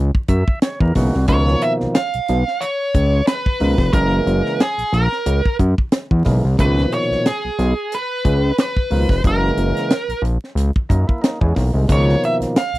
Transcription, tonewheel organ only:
0.29 E5
0.63 C#5
0.81 A#4
0.95 C#3 E3 G#3 A#3 F#4
1.28 B2 D#3 F3 A#3
3.60 B2 D#3 F3 A#3
3.93 C#3 E3 G#3 A#3
6.25 C#3 E3 G#3 A#3
6.57 B2 D#3 F3 A3
6.65 A#2
8.91 B2 D#3 F3 A#3
9.24 C#3 E3 G#3 A#3
10.89 A#3 D#4
11.08 A#3 E4
11.22 A#3 D#4
11.41 G#3 C#4
11.55 E3 A#3
11.73 D#3 G#3
11.88 B2 D#3 F3 G#3
11.95 A#3

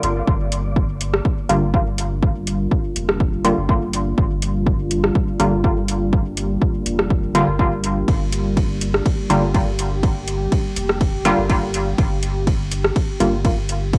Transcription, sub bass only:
0.03 G1
0.28 G1
1.49 G1
2.96 F1
3.57 G1
4.18 G1
5.40 G1
6.86 F1
7.48 G1
8.08 G1
9.30 G1
10.76 F1
11.38 G1
11.98 G1
13.20 G1

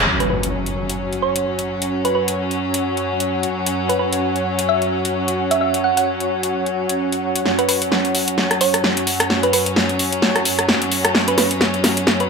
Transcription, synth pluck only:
0.20 B4
0.30 B4
1.22 C#5
2.05 B4
2.15 B4
3.89 B4
3.99 B4
4.69 E5
5.51 E5
5.61 E5
5.84 F#5
5.97 F#5
7.59 B4
7.69 B4
8.61 C#5
9.43 B4
9.53 B4
11.28 B4
11.38 B4
12.20 B4

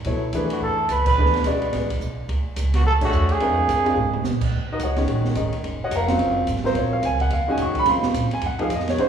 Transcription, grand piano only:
0.06 F#3 B3 E4 A4 C#5
0.34 E3 A3 D4 G#4 B4
1.18 E3 A3 D4 G#4 B4
1.46 C#3 G#3 F#4 B4 D5
3.01 A3 D4 G#4 C#5 E5
3.40 G#3 C4 D4 F4 A#4
3.84 G#3 C4 D4 F4 G#4
4.72 D#4 F#4 A#4 D#5
4.83 F#4 C#5 D#5 F#5
4.98 D#3 G#3 C#4 F#4
5.36 D#3 G#3 C#4 D#4
5.84 F#4 C#5 D#5 F#5
5.95 A#4 F5 F#5 A#5
6.09 C#3 F#3 C4 F4
6.64 F#3 C4 F4 A#4 C5
6.78 C#5
6.93 F5
7.05 G#5
7.21 F#5
7.33 F5
7.48 D#3 G#3 C#4 F#4 G#5
7.62 C#6
7.79 B5
7.87 C#3 F#3 C4 F4 C6
8.33 G#5
8.46 F#5
8.59 F3 A#3 D#4 G#4 F5
8.75 D#5
8.90 C#5
8.98 D#3 G#3 C#4 F#4 C5

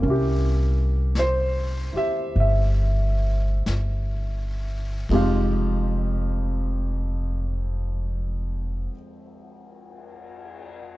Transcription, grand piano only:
0.00 A#3 C#4
0.06 E4 G4
1.19 C5
1.93 E4 G4
1.97 E5
2.40 E5
5.11 F2 F3 G#3 D#4 G4
5.15 F5

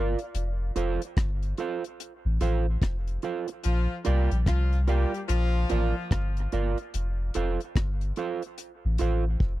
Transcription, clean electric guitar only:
Already playing: F4 A#4 D5 F5
0.76 F4 A4 C5 F5
1.58 F4 A4 C5 F5
2.41 F4 A4 C5 F5
3.23 F4 A4 C5 F5
3.49 muted clean electric guitar stroke
4.05 F4 A#4 D5 F5
4.87 F4 A#4 D5 F5
5.70 F4 A#4 D5 F5
6.53 F4 A#4 D5 F5
7.35 F4 A4 C5 F5
8.17 F4 A4 C5 F5
8.99 F4 A4 C5 F5

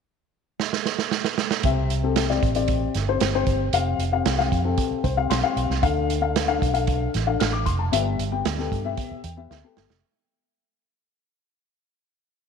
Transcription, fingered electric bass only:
1.64 C2
2.43 A1
2.95 G1
3.21 G1
3.47 G1
3.73 F1
3.98 F1
4.25 C2
4.52 F2
4.91 muted fingered electric bass stroke
5.04 C2
5.30 B1
5.56 B1
5.70 C2
5.83 D2
6.62 B1
7.15 A1
7.41 A1
7.67 F1
7.93 G1
8.19 G1
8.45 D2
8.72 G2
9.11 muted fingered electric bass stroke
9.24 E2
9.51 D2
9.77 G1
9.90 F1

